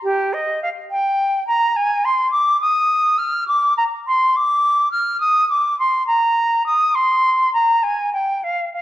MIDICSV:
0, 0, Header, 1, 2, 480
1, 0, Start_track
1, 0, Key_signature, -3, "major"
1, 0, Tempo, 571973
1, 43, Time_signature, 12, 3, 24, 8
1, 3403, Tempo, 581959
1, 7331, End_track
2, 0, Start_track
2, 0, Title_t, "Flute"
2, 0, Program_c, 0, 73
2, 28, Note_on_c, 0, 67, 93
2, 279, Note_on_c, 0, 75, 84
2, 292, Note_off_c, 0, 67, 0
2, 520, Note_off_c, 0, 75, 0
2, 524, Note_on_c, 0, 77, 84
2, 578, Note_off_c, 0, 77, 0
2, 762, Note_on_c, 0, 79, 95
2, 1232, Note_off_c, 0, 79, 0
2, 1238, Note_on_c, 0, 82, 86
2, 1481, Note_on_c, 0, 80, 90
2, 1493, Note_off_c, 0, 82, 0
2, 1719, Note_on_c, 0, 84, 83
2, 1731, Note_off_c, 0, 80, 0
2, 1937, Note_off_c, 0, 84, 0
2, 1942, Note_on_c, 0, 86, 90
2, 2182, Note_off_c, 0, 86, 0
2, 2190, Note_on_c, 0, 87, 88
2, 2670, Note_on_c, 0, 89, 89
2, 2683, Note_off_c, 0, 87, 0
2, 2910, Note_off_c, 0, 89, 0
2, 2915, Note_on_c, 0, 86, 94
2, 3153, Note_off_c, 0, 86, 0
2, 3165, Note_on_c, 0, 82, 89
2, 3219, Note_off_c, 0, 82, 0
2, 3415, Note_on_c, 0, 84, 89
2, 3653, Note_on_c, 0, 86, 100
2, 3665, Note_off_c, 0, 84, 0
2, 4108, Note_off_c, 0, 86, 0
2, 4112, Note_on_c, 0, 89, 90
2, 4343, Note_off_c, 0, 89, 0
2, 4348, Note_on_c, 0, 87, 99
2, 4585, Note_off_c, 0, 87, 0
2, 4591, Note_on_c, 0, 86, 77
2, 4827, Note_off_c, 0, 86, 0
2, 4836, Note_on_c, 0, 84, 89
2, 5060, Note_off_c, 0, 84, 0
2, 5065, Note_on_c, 0, 82, 86
2, 5545, Note_off_c, 0, 82, 0
2, 5554, Note_on_c, 0, 87, 87
2, 5791, Note_on_c, 0, 84, 96
2, 5803, Note_off_c, 0, 87, 0
2, 6271, Note_off_c, 0, 84, 0
2, 6276, Note_on_c, 0, 82, 76
2, 6518, Note_on_c, 0, 80, 82
2, 6530, Note_off_c, 0, 82, 0
2, 6758, Note_off_c, 0, 80, 0
2, 6765, Note_on_c, 0, 79, 74
2, 7016, Note_on_c, 0, 77, 73
2, 7028, Note_off_c, 0, 79, 0
2, 7249, Note_off_c, 0, 77, 0
2, 7260, Note_on_c, 0, 77, 71
2, 7331, Note_off_c, 0, 77, 0
2, 7331, End_track
0, 0, End_of_file